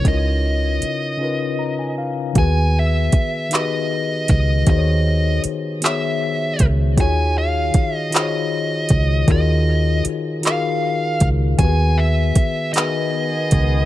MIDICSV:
0, 0, Header, 1, 7, 480
1, 0, Start_track
1, 0, Tempo, 769231
1, 32, Time_signature, 6, 3, 24, 8
1, 8644, End_track
2, 0, Start_track
2, 0, Title_t, "Lead electric guitar"
2, 0, Program_c, 0, 29
2, 49, Note_on_c, 0, 75, 88
2, 1216, Note_off_c, 0, 75, 0
2, 1486, Note_on_c, 0, 80, 123
2, 1726, Note_off_c, 0, 80, 0
2, 1741, Note_on_c, 0, 76, 97
2, 2208, Note_off_c, 0, 76, 0
2, 2210, Note_on_c, 0, 75, 95
2, 2678, Note_off_c, 0, 75, 0
2, 2685, Note_on_c, 0, 75, 93
2, 2924, Note_off_c, 0, 75, 0
2, 2931, Note_on_c, 0, 75, 90
2, 3377, Note_off_c, 0, 75, 0
2, 3649, Note_on_c, 0, 76, 91
2, 4156, Note_off_c, 0, 76, 0
2, 4372, Note_on_c, 0, 80, 123
2, 4586, Note_off_c, 0, 80, 0
2, 4605, Note_on_c, 0, 77, 113
2, 4961, Note_off_c, 0, 77, 0
2, 4961, Note_on_c, 0, 75, 113
2, 5093, Note_off_c, 0, 75, 0
2, 5095, Note_on_c, 0, 75, 88
2, 5804, Note_off_c, 0, 75, 0
2, 5812, Note_on_c, 0, 75, 79
2, 6257, Note_off_c, 0, 75, 0
2, 6531, Note_on_c, 0, 77, 90
2, 7037, Note_off_c, 0, 77, 0
2, 7232, Note_on_c, 0, 80, 127
2, 7473, Note_on_c, 0, 76, 89
2, 7479, Note_off_c, 0, 80, 0
2, 7928, Note_off_c, 0, 76, 0
2, 7944, Note_on_c, 0, 75, 87
2, 8643, Note_off_c, 0, 75, 0
2, 8644, End_track
3, 0, Start_track
3, 0, Title_t, "Tine electric piano"
3, 0, Program_c, 1, 4
3, 0, Control_c, 1, 64, 127
3, 0, Note_on_c, 1, 49, 66
3, 0, Note_on_c, 1, 61, 56
3, 0, Note_on_c, 1, 63, 53
3, 0, Note_on_c, 1, 65, 53
3, 0, Note_on_c, 1, 70, 59
3, 0, Note_on_c, 1, 73, 66
3, 17, Note_off_c, 1, 49, 0
3, 17, Note_on_c, 1, 49, 73
3, 25, Note_off_c, 1, 61, 0
3, 25, Note_on_c, 1, 61, 59
3, 31, Note_off_c, 1, 63, 0
3, 31, Note_on_c, 1, 63, 54
3, 40, Note_on_c, 1, 64, 53
3, 48, Note_off_c, 1, 70, 0
3, 48, Note_on_c, 1, 70, 65
3, 54, Note_off_c, 1, 73, 0
3, 54, Note_on_c, 1, 73, 70
3, 77, Note_off_c, 1, 64, 0
3, 82, Note_off_c, 1, 65, 0
3, 82, Note_on_c, 1, 65, 64
3, 638, Note_off_c, 1, 49, 0
3, 642, Note_off_c, 1, 61, 0
3, 645, Note_off_c, 1, 63, 0
3, 654, Note_off_c, 1, 70, 0
3, 657, Note_off_c, 1, 73, 0
3, 670, Note_off_c, 1, 65, 0
3, 733, Note_on_c, 1, 49, 76
3, 740, Note_on_c, 1, 61, 65
3, 748, Note_on_c, 1, 63, 57
3, 756, Note_on_c, 1, 65, 61
3, 764, Note_on_c, 1, 70, 60
3, 769, Note_on_c, 1, 71, 79
3, 992, Note_on_c, 1, 82, 61
3, 1103, Note_off_c, 1, 82, 0
3, 1117, Note_on_c, 1, 80, 53
3, 1227, Note_off_c, 1, 80, 0
3, 1236, Note_on_c, 1, 77, 71
3, 1356, Note_off_c, 1, 49, 0
3, 1359, Note_off_c, 1, 61, 0
3, 1364, Note_off_c, 1, 63, 0
3, 1368, Note_off_c, 1, 65, 0
3, 1371, Note_off_c, 1, 70, 0
3, 1374, Note_off_c, 1, 71, 0
3, 1455, Note_on_c, 1, 51, 71
3, 1458, Note_off_c, 1, 77, 0
3, 1465, Note_on_c, 1, 59, 60
3, 1474, Note_on_c, 1, 66, 72
3, 1481, Control_c, 1, 64, 0
3, 1484, Note_on_c, 1, 68, 64
3, 1491, Note_on_c, 1, 71, 76
3, 1580, Control_c, 1, 64, 127
3, 2077, Note_off_c, 1, 51, 0
3, 2082, Note_off_c, 1, 59, 0
3, 2086, Note_off_c, 1, 66, 0
3, 2092, Note_off_c, 1, 68, 0
3, 2095, Note_off_c, 1, 71, 0
3, 2181, Note_on_c, 1, 51, 63
3, 2192, Note_on_c, 1, 63, 67
3, 2201, Note_on_c, 1, 66, 56
3, 2209, Note_on_c, 1, 67, 51
3, 2220, Note_on_c, 1, 71, 75
3, 2241, Note_off_c, 1, 67, 0
3, 2253, Note_on_c, 1, 68, 57
3, 2800, Note_off_c, 1, 51, 0
3, 2805, Note_off_c, 1, 63, 0
3, 2810, Note_off_c, 1, 66, 0
3, 2820, Note_off_c, 1, 71, 0
3, 2836, Note_off_c, 1, 68, 0
3, 2902, Note_on_c, 1, 51, 76
3, 2911, Note_on_c, 1, 63, 67
3, 2921, Note_on_c, 1, 66, 73
3, 2930, Note_on_c, 1, 68, 68
3, 2939, Note_on_c, 1, 72, 71
3, 2966, Note_off_c, 1, 72, 0
3, 2982, Note_on_c, 1, 73, 82
3, 3520, Note_off_c, 1, 51, 0
3, 3525, Note_off_c, 1, 63, 0
3, 3530, Note_off_c, 1, 66, 0
3, 3535, Note_off_c, 1, 68, 0
3, 3560, Note_off_c, 1, 73, 0
3, 3621, Note_on_c, 1, 51, 64
3, 3630, Note_on_c, 1, 59, 61
3, 3639, Note_on_c, 1, 66, 57
3, 3648, Note_on_c, 1, 68, 62
3, 3658, Note_on_c, 1, 73, 72
3, 4240, Note_off_c, 1, 51, 0
3, 4245, Note_off_c, 1, 59, 0
3, 4249, Note_off_c, 1, 66, 0
3, 4253, Note_off_c, 1, 68, 0
3, 4259, Note_off_c, 1, 73, 0
3, 4343, Note_on_c, 1, 51, 74
3, 4350, Note_on_c, 1, 63, 67
3, 4359, Note_on_c, 1, 65, 67
3, 4361, Control_c, 1, 64, 0
3, 4365, Note_on_c, 1, 66, 70
3, 4371, Note_on_c, 1, 68, 74
3, 4379, Note_on_c, 1, 73, 89
3, 4453, Control_c, 1, 64, 127
3, 4961, Note_off_c, 1, 51, 0
3, 4964, Note_off_c, 1, 63, 0
3, 4969, Note_off_c, 1, 65, 0
3, 4972, Note_off_c, 1, 66, 0
3, 4975, Note_off_c, 1, 68, 0
3, 4979, Note_off_c, 1, 73, 0
3, 5057, Note_on_c, 1, 51, 76
3, 5062, Note_on_c, 1, 63, 59
3, 5071, Note_on_c, 1, 65, 64
3, 5077, Note_on_c, 1, 66, 65
3, 5086, Note_on_c, 1, 68, 62
3, 5093, Note_on_c, 1, 72, 53
3, 5123, Note_off_c, 1, 72, 0
3, 5133, Note_on_c, 1, 73, 74
3, 5678, Note_off_c, 1, 51, 0
3, 5681, Note_off_c, 1, 63, 0
3, 5685, Note_off_c, 1, 65, 0
3, 5688, Note_off_c, 1, 66, 0
3, 5692, Note_off_c, 1, 68, 0
3, 5716, Note_off_c, 1, 73, 0
3, 5782, Note_on_c, 1, 51, 86
3, 5787, Note_on_c, 1, 63, 78
3, 5794, Note_on_c, 1, 65, 72
3, 5805, Note_on_c, 1, 66, 74
3, 5811, Note_on_c, 1, 68, 68
3, 5817, Note_on_c, 1, 70, 84
3, 6401, Note_off_c, 1, 51, 0
3, 6403, Note_off_c, 1, 63, 0
3, 6407, Note_off_c, 1, 65, 0
3, 6412, Note_off_c, 1, 66, 0
3, 6415, Note_off_c, 1, 68, 0
3, 6418, Note_off_c, 1, 70, 0
3, 6498, Note_on_c, 1, 51, 70
3, 6506, Note_on_c, 1, 63, 65
3, 6513, Note_on_c, 1, 65, 58
3, 6522, Note_on_c, 1, 66, 62
3, 6528, Note_on_c, 1, 68, 55
3, 6535, Note_on_c, 1, 70, 71
3, 7119, Note_off_c, 1, 51, 0
3, 7123, Note_off_c, 1, 63, 0
3, 7126, Note_off_c, 1, 65, 0
3, 7131, Note_off_c, 1, 66, 0
3, 7134, Note_off_c, 1, 68, 0
3, 7137, Note_off_c, 1, 70, 0
3, 7222, Note_on_c, 1, 51, 80
3, 7229, Note_on_c, 1, 59, 66
3, 7239, Control_c, 1, 64, 0
3, 7239, Note_on_c, 1, 66, 78
3, 7246, Note_on_c, 1, 67, 55
3, 7257, Note_on_c, 1, 71, 80
3, 7280, Note_off_c, 1, 67, 0
3, 7288, Note_on_c, 1, 68, 70
3, 7331, Control_c, 1, 64, 127
3, 7840, Note_off_c, 1, 51, 0
3, 7844, Note_off_c, 1, 59, 0
3, 7849, Note_off_c, 1, 66, 0
3, 7858, Note_off_c, 1, 71, 0
3, 7874, Note_off_c, 1, 68, 0
3, 7941, Note_on_c, 1, 51, 68
3, 7952, Note_on_c, 1, 63, 62
3, 7960, Note_on_c, 1, 66, 64
3, 7967, Note_on_c, 1, 68, 62
3, 7979, Note_on_c, 1, 71, 72
3, 8560, Note_off_c, 1, 51, 0
3, 8565, Note_off_c, 1, 63, 0
3, 8570, Note_off_c, 1, 66, 0
3, 8573, Note_off_c, 1, 68, 0
3, 8579, Note_off_c, 1, 71, 0
3, 8644, End_track
4, 0, Start_track
4, 0, Title_t, "Horn section"
4, 0, Program_c, 2, 61
4, 7950, Note_on_c, 2, 68, 70
4, 7951, Note_on_c, 2, 59, 75
4, 7953, Note_on_c, 2, 51, 70
4, 8644, Note_off_c, 2, 51, 0
4, 8644, Note_off_c, 2, 59, 0
4, 8644, Note_off_c, 2, 68, 0
4, 8644, End_track
5, 0, Start_track
5, 0, Title_t, "Fingered electric bass"
5, 0, Program_c, 3, 33
5, 35, Note_on_c, 3, 37, 99
5, 489, Note_off_c, 3, 37, 0
5, 1476, Note_on_c, 3, 39, 106
5, 1929, Note_off_c, 3, 39, 0
5, 2684, Note_on_c, 3, 37, 96
5, 2895, Note_off_c, 3, 37, 0
5, 2916, Note_on_c, 3, 39, 127
5, 3369, Note_off_c, 3, 39, 0
5, 4124, Note_on_c, 3, 37, 99
5, 4355, Note_off_c, 3, 37, 0
5, 4355, Note_on_c, 3, 39, 112
5, 4809, Note_off_c, 3, 39, 0
5, 5560, Note_on_c, 3, 37, 86
5, 5772, Note_off_c, 3, 37, 0
5, 5793, Note_on_c, 3, 39, 112
5, 6247, Note_off_c, 3, 39, 0
5, 6999, Note_on_c, 3, 37, 91
5, 7212, Note_off_c, 3, 37, 0
5, 7233, Note_on_c, 3, 39, 119
5, 7688, Note_off_c, 3, 39, 0
5, 8441, Note_on_c, 3, 37, 90
5, 8644, Note_off_c, 3, 37, 0
5, 8644, End_track
6, 0, Start_track
6, 0, Title_t, "Muted fingered electric bass strokes"
6, 517, Note_on_c, 9, 29, 38
6, 580, Note_off_c, 9, 29, 0
6, 1955, Note_on_c, 9, 29, 52
6, 2018, Note_off_c, 9, 29, 0
6, 3401, Note_on_c, 9, 29, 49
6, 3463, Note_off_c, 9, 29, 0
6, 4836, Note_on_c, 9, 29, 51
6, 4898, Note_off_c, 9, 29, 0
6, 6275, Note_on_c, 9, 29, 49
6, 6338, Note_off_c, 9, 29, 0
6, 7714, Note_on_c, 9, 29, 45
6, 7776, Note_off_c, 9, 29, 0
6, 8644, End_track
7, 0, Start_track
7, 0, Title_t, "Drums"
7, 30, Note_on_c, 9, 36, 91
7, 31, Note_on_c, 9, 42, 58
7, 93, Note_off_c, 9, 36, 0
7, 94, Note_off_c, 9, 42, 0
7, 511, Note_on_c, 9, 42, 61
7, 574, Note_off_c, 9, 42, 0
7, 1469, Note_on_c, 9, 42, 69
7, 1471, Note_on_c, 9, 36, 105
7, 1531, Note_off_c, 9, 42, 0
7, 1533, Note_off_c, 9, 36, 0
7, 1950, Note_on_c, 9, 42, 75
7, 1952, Note_on_c, 9, 36, 104
7, 2012, Note_off_c, 9, 42, 0
7, 2015, Note_off_c, 9, 36, 0
7, 2190, Note_on_c, 9, 42, 77
7, 2209, Note_on_c, 9, 39, 103
7, 2252, Note_off_c, 9, 42, 0
7, 2271, Note_off_c, 9, 39, 0
7, 2672, Note_on_c, 9, 42, 73
7, 2680, Note_on_c, 9, 36, 85
7, 2735, Note_off_c, 9, 42, 0
7, 2742, Note_off_c, 9, 36, 0
7, 2912, Note_on_c, 9, 42, 74
7, 2913, Note_on_c, 9, 36, 111
7, 2974, Note_off_c, 9, 42, 0
7, 2976, Note_off_c, 9, 36, 0
7, 3393, Note_on_c, 9, 42, 77
7, 3455, Note_off_c, 9, 42, 0
7, 3631, Note_on_c, 9, 42, 78
7, 3650, Note_on_c, 9, 39, 113
7, 3693, Note_off_c, 9, 42, 0
7, 3712, Note_off_c, 9, 39, 0
7, 4113, Note_on_c, 9, 42, 73
7, 4119, Note_on_c, 9, 36, 85
7, 4175, Note_off_c, 9, 42, 0
7, 4181, Note_off_c, 9, 36, 0
7, 4352, Note_on_c, 9, 36, 103
7, 4353, Note_on_c, 9, 42, 73
7, 4415, Note_off_c, 9, 36, 0
7, 4415, Note_off_c, 9, 42, 0
7, 4829, Note_on_c, 9, 42, 76
7, 4833, Note_on_c, 9, 36, 95
7, 4891, Note_off_c, 9, 42, 0
7, 4895, Note_off_c, 9, 36, 0
7, 5070, Note_on_c, 9, 42, 74
7, 5088, Note_on_c, 9, 39, 113
7, 5132, Note_off_c, 9, 42, 0
7, 5151, Note_off_c, 9, 39, 0
7, 5546, Note_on_c, 9, 42, 69
7, 5556, Note_on_c, 9, 36, 89
7, 5608, Note_off_c, 9, 42, 0
7, 5619, Note_off_c, 9, 36, 0
7, 5789, Note_on_c, 9, 36, 110
7, 5789, Note_on_c, 9, 42, 66
7, 5852, Note_off_c, 9, 36, 0
7, 5852, Note_off_c, 9, 42, 0
7, 6270, Note_on_c, 9, 42, 81
7, 6332, Note_off_c, 9, 42, 0
7, 6510, Note_on_c, 9, 42, 69
7, 6529, Note_on_c, 9, 39, 103
7, 6572, Note_off_c, 9, 42, 0
7, 6591, Note_off_c, 9, 39, 0
7, 6991, Note_on_c, 9, 42, 72
7, 6996, Note_on_c, 9, 36, 81
7, 7054, Note_off_c, 9, 42, 0
7, 7059, Note_off_c, 9, 36, 0
7, 7230, Note_on_c, 9, 36, 102
7, 7230, Note_on_c, 9, 42, 77
7, 7292, Note_off_c, 9, 42, 0
7, 7293, Note_off_c, 9, 36, 0
7, 7709, Note_on_c, 9, 42, 85
7, 7711, Note_on_c, 9, 36, 102
7, 7772, Note_off_c, 9, 42, 0
7, 7774, Note_off_c, 9, 36, 0
7, 7949, Note_on_c, 9, 42, 69
7, 7967, Note_on_c, 9, 39, 121
7, 8011, Note_off_c, 9, 42, 0
7, 8030, Note_off_c, 9, 39, 0
7, 8431, Note_on_c, 9, 42, 70
7, 8438, Note_on_c, 9, 36, 82
7, 8493, Note_off_c, 9, 42, 0
7, 8500, Note_off_c, 9, 36, 0
7, 8644, End_track
0, 0, End_of_file